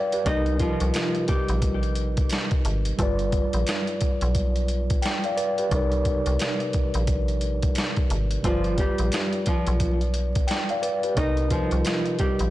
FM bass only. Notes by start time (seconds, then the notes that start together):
0.26 C2
0.81 C2
1.49 A#1
2.65 G#1
2.99 G1
3.54 A#1
4.22 B1
5.72 C2
6.27 C2
6.95 A#1
8.11 G#1
8.44 G1
8.99 A#1
9.68 B1
11.17 C2
11.72 C2
12.40 A#1